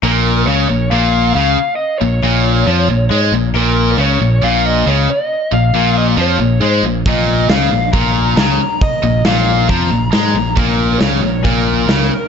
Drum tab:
HH |----------------|----------------|----------------|----------------|
SD |----------------|----------------|----------------|----------------|
BD |----------------|----------------|----------------|----------------|

HH |o---o---o---o---|o---o---o---o---|o---o---o---o---|
SD |----o-------o---|----o-------o---|----o-------oo--|
BD |o-------o-------|o-------o-------|o-------o-------|